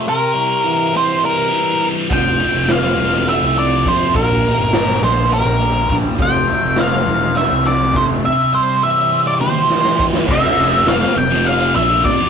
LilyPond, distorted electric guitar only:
\new Staff \with { instrumentName = "Distorted electric guitar" } { \clef bass \time 7/8 \key f \major \tempo 4 = 103 c8 g8 e8 c'8 g8 e8 g8 | f8 a8 f8 c'8 a8 f8 a8 | bes,8 g8 d8 d'8 g8 d8 g8 | f8 a8 f8 c'8 a8 f8 a8 |
c8 g8 e8 c'8 g8 e8 g8 | <f, c f>8 <f, c f>8 <f, c f>16 <c f>8 <c f>8. <f, c f>16 <c f>16 <f, c f>16 <c f>16 | }